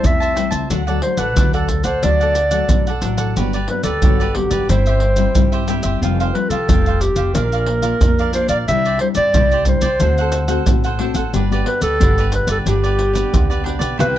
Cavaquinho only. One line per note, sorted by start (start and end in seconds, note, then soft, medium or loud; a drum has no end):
0.00 0.19 C5 soft
0.00 0.18 E5 medium
0.00 0.18 A5 medium
0.20 0.35 C5 soft
0.20 0.35 E5 medium
0.20 0.36 A5 medium
0.35 0.52 G4 soft
0.35 0.52 C5 soft
0.35 0.50 E5 soft
0.35 0.49 A5 soft
0.51 0.69 C5 soft
0.51 0.68 E5 medium
0.51 0.68 A5 medium
0.70 0.86 D4 soft
0.70 0.86 A4 soft
0.70 0.86 D5 soft
0.70 0.86 F#5 soft
0.87 1.01 A4 soft
0.87 1.02 D5 medium
0.87 1.02 F#5 medium
1.02 muted cavaquinho stroke soft
1.18 1.35 A4 soft
1.18 1.35 D5 soft
1.18 1.34 F#5 medium
1.36 1.52 D4 soft
1.36 1.52 A4 soft
1.36 1.53 D5 soft
1.36 1.53 F#5 soft
1.54 1.68 A4 soft
1.54 1.68 D5 medium
1.54 1.68 F#5 medium
1.69 muted cavaquinho stroke soft
1.84 2.02 A4 soft
1.84 2.01 D5 medium
1.84 2.01 F#5 medium
2.03 2.18 D4 soft
2.03 2.19 A4 soft
2.03 2.19 D5 soft
2.03 2.19 F#5 soft
2.20 2.52 A4 soft
2.20 2.51 D5 soft
2.20 2.49 F#5 medium
2.51 2.85 A4 soft
2.51 2.84 D5 medium
2.51 2.84 F#5 medium
2.87 3.01 A4 soft
2.87 3.02 D5 medium
2.87 3.02 F#5 medium
3.01 3.18 D4 soft
3.01 3.18 A4 soft
3.01 3.17 D5 soft
3.01 3.16 F#5 soft
3.17 3.35 A4 soft
3.17 3.34 D5 soft
3.17 3.34 F#5 medium
3.36 3.52 F#4 soft
3.36 3.52 G4 soft
3.36 3.52 B4 soft
3.36 3.53 D5 soft
3.54 3.68 G4 soft
3.54 3.68 B4 medium
3.54 3.69 D5 medium
3.69 muted cavaquinho stroke soft
3.84 4.02 G4 soft
3.84 4.01 B4 soft
3.84 4.00 D5 medium
4.03 4.18 F#4 soft
4.03 4.18 G4 soft
4.03 4.19 B4 soft
4.03 4.19 D5 soft
4.20 4.35 G4 soft
4.20 4.35 B4 medium
4.20 4.35 D5 medium
4.35 muted cavaquinho stroke soft
4.50 4.68 G4 medium
4.50 4.67 B4 soft
4.50 4.67 D5 medium
4.70 4.85 E4 soft
4.70 4.85 G4 soft
4.70 4.86 C5 soft
4.70 4.86 E5 soft
4.87 5.18 G4 soft
4.87 5.17 C5 medium
4.87 5.16 E5 medium
5.17 5.51 G4 soft
5.17 5.50 C5 medium
5.17 5.50 E5 medium
5.52 5.68 G4 medium
5.52 5.68 C5 medium
5.52 5.67 E5 medium
5.68 5.84 E4 soft
5.68 5.84 G4 soft
5.68 5.84 C5 soft
5.68 5.82 E5 soft
5.84 6.01 G4 soft
5.84 6.00 C5 medium
5.84 6.00 E5 medium
6.02 6.17 F4 soft
6.02 6.18 G4 soft
6.02 6.18 C5 soft
6.02 6.19 F5 soft
6.20 6.35 G4 soft
6.20 6.35 C5 medium
6.20 6.35 F5 medium
6.35 muted cavaquinho stroke soft
6.51 6.68 G4 soft
6.51 6.67 C5 soft
6.51 6.67 F5 medium
6.70 6.84 F4 soft
6.70 6.85 G4 soft
6.70 6.85 C5 soft
6.70 6.86 F5 soft
6.87 7.01 G4 soft
6.87 7.02 C5 medium
6.87 7.01 F5 medium
7.02 muted cavaquinho stroke soft
7.16 7.34 G4 soft
7.16 7.33 C5 medium
7.16 7.32 F5 medium
7.35 7.50 D4 soft
7.35 7.51 A#4 soft
7.35 7.51 D5 soft
7.35 7.51 F5 soft
7.53 7.83 A#4 soft
7.53 7.82 D5 soft
7.53 7.81 F5 medium
7.82 8.16 A#4 soft
7.82 8.16 D5 medium
7.82 8.15 F5 medium
8.19 8.34 A#4 medium
8.19 8.34 D5 medium
8.19 8.34 F5 medium
8.34 8.49 D4 soft
8.34 8.50 A#4 soft
8.34 8.49 D5 soft
8.34 8.48 F5 soft
8.49 8.66 A#4 soft
8.49 8.66 D5 medium
8.49 8.65 F5 medium
8.68 8.83 E4 soft
8.68 8.83 G4 soft
8.68 8.84 C5 soft
8.68 8.84 D5 soft
8.86 9.00 G4 soft
8.86 9.00 C5 medium
8.86 9.00 D5 medium
9.01 muted cavaquinho stroke soft
9.15 9.33 G4 soft
9.15 9.32 C5 medium
9.15 9.32 D5 soft
9.35 9.50 E4 soft
9.35 9.50 G4 soft
9.35 9.50 C5 soft
9.35 9.50 D5 soft
9.52 9.66 G4 medium
9.52 9.66 C5 medium
9.52 9.66 D5 medium
9.66 muted cavaquinho stroke soft
9.82 9.99 G4 soft
9.82 9.99 C5 medium
9.82 9.98 D5 medium
10.01 10.16 D4 soft
10.01 10.16 A4 soft
10.01 10.17 C5 soft
10.01 10.17 F#5 soft
10.18 10.49 A4 medium
10.18 10.48 C5 medium
10.18 10.47 F#5 medium
10.48 10.82 A4 soft
10.48 10.82 C5 medium
10.48 10.81 F#5 medium
10.84 10.99 A4 medium
10.84 10.99 C5 medium
10.84 10.99 F#5 medium
10.99 11.15 D4 soft
10.99 11.15 A4 soft
10.99 11.15 C5 soft
10.99 11.14 F#5 soft
11.15 11.32 A4 soft
11.15 11.32 C5 soft
11.15 11.31 F#5 medium
11.34 11.49 D4 soft
11.34 11.49 G4 soft
11.34 11.50 B4 soft
11.34 11.50 D5 soft
11.52 11.67 G4 soft
11.52 11.67 B4 soft
11.52 11.66 D5 medium
11.67 muted cavaquinho stroke soft
11.82 11.99 G4 soft
11.82 11.98 B4 soft
11.82 11.98 D5 medium
12.00 12.15 D4 soft
12.00 12.16 G4 soft
12.00 12.16 B4 soft
12.00 12.16 D5 soft
12.18 12.33 G4 medium
12.18 12.33 B4 medium
12.18 12.32 D5 medium
12.33 muted cavaquinho stroke soft
12.49 12.65 G4 soft
12.49 12.65 B4 soft
12.49 12.64 D5 medium
12.67 12.82 D4 soft
12.67 12.82 G4 soft
12.67 12.83 B4 soft
12.67 12.82 D5 soft
12.84 13.14 G4 medium
12.84 13.14 B4 medium
12.84 13.12 D5 medium
13.13 13.48 G4 medium
13.13 13.47 B4 medium
13.13 13.47 D5 medium
13.50 13.63 G4 soft
13.50 13.64 B4 medium
13.50 13.64 D5 medium
13.64 13.80 D4 soft
13.64 13.80 G4 soft
13.64 13.79 B4 soft
13.64 13.78 D5 soft
13.79 13.97 G4 soft
13.79 13.97 B4 medium
13.79 13.96 D5 medium
13.98 14.14 E4 soft
13.98 14.15 B4 soft
13.98 14.14 C5 soft
13.98 14.15 G5 soft